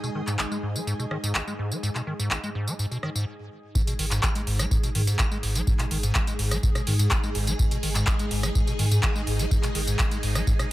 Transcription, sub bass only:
3.99 G#1
4.47 G#1
4.95 G#2
5.43 G#1
5.91 G#1
6.39 G#1
6.87 G#2
7.35 G#1
7.83 G#1
8.31 G#1
8.79 G#2
9.27 G#1
9.75 G#1
10.23 G#1

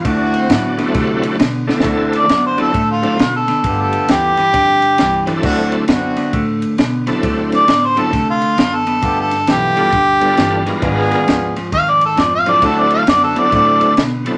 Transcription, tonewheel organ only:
0.07 D4
0.36 C4
0.51 F#3 D4
0.78 A3 C4 E4 F#4
1.67 D3 A3 C4 E4 A4
2.57 F#3 C4 D4 E4 A4
3.02 F#3 C4 D4 E4 A4
5.26 F#3 C4 D4 E4 A4
7.06 F#3 C4 D4 E4 A4
7.96 F#3 C4 D4 E4 A4
9.75 G3 B3 D4 F4 A4
10.20 G3 B3 D4 F4 A4
10.65 G#3 B3 D4 F4 A#4
12.45 F#3 C4 D4 E4 A4
13.35 F#3 C4 D4 E4 A4
14.25 F#3 C4 D4 E4 A4

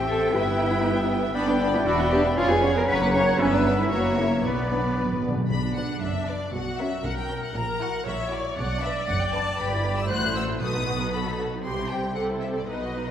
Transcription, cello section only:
0.08 A4
0.33 E4
1.35 B3
1.48 D4
1.74 E4
1.86 F#4
2.12 G4
2.37 F4
2.51 G#4
2.76 A#4
2.89 B4
3.14 C#5
3.40 C#4
3.54 D4
3.79 E4
3.92 F#4
4.18 A#3
4.44 B3
5.50 B2
6.02 F#2
6.53 B2
7.05 B2
7.56 A#2
8.07 A#2
8.58 B2
9.08 F#2
9.59 G2
10.10 A2
10.62 B2
11.63 C3
12.69 B2

